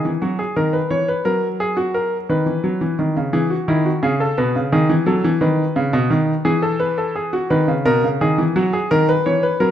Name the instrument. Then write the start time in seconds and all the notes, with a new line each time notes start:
grand piano
0.05 E3
0.22 F#3 F#4
0.39 G#4
0.56 D#3 A#4
0.73 B4
0.91 E3 C#5
1.08 B4
1.25 F#3 A#4
1.60 G#4
1.77 F#4
1.94 A#4
2.29 D#3 B4
2.46 E3
2.64 F#3
2.81 E3
2.99 D#3
3.17 C#3
3.33 E3 G#4
3.50 F#4
3.68 D#3 E4
3.85 F#4
4.03 C#3 G#4
4.20 A4
4.38 B2 B4
4.56 C#3
4.72 D#3 G#4
4.89 E3
5.06 F#3 A4
5.24 E3
5.41 D#3 B4
5.76 C#3
5.93 B2
6.10 D#3
6.45 E3 G#4
6.62 A4
6.80 B4
6.98 A4
7.16 G#4
7.33 F#4
7.50 D#3 B4
7.68 C#3
7.85 B2 A#4
8.04 C#3
8.21 D#3 G#4
8.38 E3
8.56 F#3 F#4
8.73 G#4
8.91 D#3 A#4
9.09 B4
9.26 E3 C#5
9.43 B4
9.60 F#3 A#4